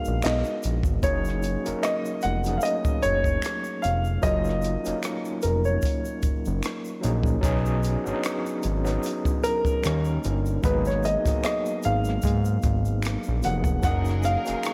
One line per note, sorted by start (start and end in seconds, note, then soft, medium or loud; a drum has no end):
0.00 1.05 G#3 medium
0.00 1.05 B3 medium
0.00 1.05 D#4 medium
0.00 1.05 F#4 medium
0.00 0.25 G#4 medium
0.00 1.05 A#4 medium
0.00 0.26 F5 loud
0.05 0.22 A#1 medium
0.05 shaker soft
0.22 0.44 B1 medium
0.22 0.82 D#5 medium
0.22 finger snap medium
0.22 snare loud
0.22 closed hi-hat medium
0.22 shaker medium
0.27 clap medium
0.44 shaker soft
0.63 0.83 A#1 medium
0.63 closed hi-hat medium
0.63 shaker soft
0.83 1.00 G#1 medium
0.83 kick medium
0.83 shaker soft
1.02 1.57 F#1 loud
1.02 1.49 F#3 medium
1.02 1.49 A#3 medium
1.02 1.49 C#4 medium
1.02 1.50 D#4 medium
1.02 1.50 G#4 medium
1.02 1.79 C#5 medium
1.02 kick loud
1.02 closed hi-hat medium
1.02 shaker medium
1.25 cross-stick soft
1.25 shaker soft
1.42 closed hi-hat medium
1.42 shaker soft
1.64 1.74 F1 soft
1.64 2.23 F#3 medium
1.64 2.23 A#3 medium
1.64 2.24 C#4 medium
1.64 2.24 D#4 medium
1.64 2.25 A#4 medium
1.64 closed hi-hat medium
1.64 shaker soft
1.83 2.24 D#5 medium
1.83 finger snap medium
1.83 cross-stick loud
1.83 closed hi-hat medium
1.83 shaker medium
2.05 shaker soft
2.21 2.58 F1 medium
2.21 2.58 F#5 medium
2.21 closed hi-hat medium
2.21 shaker soft
2.44 3.65 F#3 medium
2.44 2.51 A3 soft
2.44 3.66 C#4 medium
2.44 3.67 D#4 medium
2.44 closed hi-hat soft
2.44 shaker soft
2.48 3.69 A#3 medium
2.48 3.67 G#4 medium
2.57 2.63 F5 medium
2.57 shaker medium
2.63 3.00 D#5 medium
2.63 closed hi-hat medium
2.85 kick medium
2.85 shaker soft
3.02 3.38 F#1 medium
3.02 3.85 C#5 loud
3.02 closed hi-hat medium
3.02 shaker soft
3.24 kick medium
3.24 shaker soft
3.42 finger snap medium
3.42 cross-stick medium
3.42 closed hi-hat medium
3.42 shaker medium
3.64 shaker soft
3.82 4.18 F1 medium
3.82 4.24 F5 medium
3.82 closed hi-hat medium
3.82 shaker soft
4.04 shaker soft
4.22 4.77 F#1 loud
4.22 4.68 F#3 medium
4.22 4.69 A#3 medium
4.22 4.69 C#4 medium
4.22 4.70 D#4 medium
4.22 4.70 F4 medium
4.22 5.39 D#5 medium
4.22 kick loud
4.22 closed hi-hat medium
4.22 shaker medium
4.44 shaker soft
4.49 cross-stick soft
4.62 closed hi-hat medium
4.62 shaker soft
4.84 4.94 F1 soft
4.84 6.05 F#3 medium
4.84 6.06 A#3 medium
4.84 6.06 C#4 medium
4.84 6.06 D#4 medium
4.84 6.07 A#4 medium
4.84 closed hi-hat medium
4.84 shaker soft
5.03 finger snap medium
5.03 cross-stick loud
5.03 closed hi-hat medium
5.03 shaker medium
5.25 shaker soft
5.42 5.78 F1 medium
5.42 5.66 A#4 medium
5.42 closed hi-hat medium
5.42 shaker soft
5.64 6.99 C#5 medium
5.64 shaker soft
5.82 kick medium
5.82 closed hi-hat medium
5.82 shaker medium
6.05 shaker soft
6.22 6.33 F#1 soft
6.22 kick medium
6.22 closed hi-hat medium
6.22 shaker soft
6.45 6.62 F#1 medium
6.45 shaker soft
6.63 finger snap medium
6.63 cross-stick medium
6.63 closed hi-hat medium
6.63 shaker medium
6.85 shaker soft
7.01 7.38 A#1 medium
7.01 7.33 F#3 medium
7.01 7.34 A#3 medium
7.01 7.34 C#4 medium
7.01 7.35 D#4 medium
7.01 7.35 G#4 medium
7.01 closed hi-hat medium
7.01 shaker soft
7.24 kick medium
7.24 shaker soft
7.41 7.97 B1 loud
7.41 7.88 F#3 loud
7.41 7.88 B3 medium
7.41 7.89 C#4 medium
7.41 7.89 D#4 medium
7.41 7.90 G#4 loud
7.41 kick loud
7.41 closed hi-hat medium
7.41 shaker medium
7.66 shaker soft
7.83 closed hi-hat medium
7.83 shaker soft
8.04 8.14 G#1 soft
8.04 8.63 F#3 medium
8.04 8.63 B3 medium
8.04 8.64 C#4 medium
8.04 8.12 D4 medium
8.04 8.65 G#4 medium
8.04 shaker soft
8.13 8.67 D#4 medium
8.24 finger snap medium
8.24 cross-stick loud
8.24 closed hi-hat medium
8.24 shaker medium
8.46 shaker soft
8.63 8.98 G#1 medium
8.63 closed hi-hat medium
8.63 shaker soft
8.84 9.83 F#3 medium
8.84 9.83 B3 medium
8.84 9.82 C#4 medium
8.84 9.83 D#4 medium
8.84 9.84 G#4 medium
8.84 cross-stick soft
8.84 closed hi-hat soft
8.84 shaker soft
9.03 closed hi-hat medium
9.03 shaker medium
9.25 kick medium
9.25 shaker soft
9.43 10.19 A#4 loud
9.43 closed hi-hat medium
9.43 shaker soft
9.65 kick medium
9.65 shaker soft
9.82 10.19 D#2 medium
9.82 10.48 G3 medium
9.82 10.49 A#3 medium
9.82 10.49 C#4 medium
9.82 10.50 D#4 medium
9.82 10.50 A#4 medium
9.82 finger snap medium
9.82 closed hi-hat medium
9.82 shaker medium
9.87 cross-stick loud
10.04 shaker soft
10.23 10.59 G1 loud
10.23 closed hi-hat medium
10.23 shaker soft
10.46 shaker soft
10.62 11.17 G#1 loud
10.62 11.08 F#3 medium
10.62 11.09 A#3 medium
10.62 11.09 B3 medium
10.62 11.10 D#4 medium
10.62 11.10 G#4 loud
10.62 10.87 B4 medium
10.62 kick loud
10.62 closed hi-hat medium
10.62 shaker medium
10.85 11.04 C#5 medium
10.85 shaker soft
10.90 cross-stick soft
11.03 11.43 D#5 medium
11.03 closed hi-hat medium
11.03 shaker soft
11.24 11.33 G#1 soft
11.24 12.45 F#3 medium
11.24 12.46 A#3 medium
11.24 12.46 B3 medium
11.24 12.46 D#4 medium
11.24 12.47 G#4 medium
11.24 kick medium
11.24 closed hi-hat medium
11.24 shaker soft
11.44 11.81 D#5 medium
11.44 finger snap medium
11.44 cross-stick loud
11.44 closed hi-hat medium
11.44 shaker medium
11.66 shaker soft
11.83 12.19 G#1 medium
11.83 13.49 F5 medium
11.83 closed hi-hat medium
11.83 shaker soft
12.05 shaker soft
12.09 cross-stick soft
12.22 12.58 G#2 loud
12.22 kick medium
12.22 shaker medium
12.27 closed hi-hat medium
12.45 shaker soft
12.62 13.17 G#1 medium
12.62 kick medium
12.62 closed hi-hat medium
12.62 shaker soft
12.85 shaker soft
13.03 finger snap medium
13.03 closed hi-hat medium
13.03 shaker medium
13.07 cross-stick medium
13.23 shaker soft
13.28 13.42 A#1 medium
13.42 13.79 F1 medium
13.42 13.74 F#3 medium
13.42 13.75 A#3 medium
13.42 13.75 B3 medium
13.42 13.76 D#4 medium
13.42 13.76 G#4 medium
13.42 13.83 F#5 medium
13.42 closed hi-hat medium
13.42 shaker soft
13.64 kick medium
13.64 shaker soft
13.83 14.37 F#1 loud
13.83 14.29 F#3 medium
13.83 14.74 F#3 medium
13.83 14.29 A#3 medium
13.83 14.30 C#4 medium
13.83 14.74 D#4 medium
13.83 14.30 D#4 medium
13.83 14.74 G#4 medium
13.83 14.31 G#4 medium
13.83 14.74 A#4 medium
13.83 14.25 F#5 medium
13.83 kick loud
13.83 closed hi-hat medium
13.83 shaker medium
14.05 shaker soft
14.10 cross-stick soft
14.23 14.74 F5 medium
14.23 closed hi-hat medium
14.23 shaker soft
14.45 14.55 F1 soft
14.45 14.74 F#3 medium
14.45 14.74 A#3 medium
14.45 14.74 C#4 medium
14.45 14.74 D#4 medium
14.45 14.53 G#4 medium
14.45 closed hi-hat medium
14.45 shaker soft
14.55 14.74 A#4 medium
14.63 finger snap medium
14.63 cross-stick loud
14.63 closed hi-hat medium
14.63 shaker medium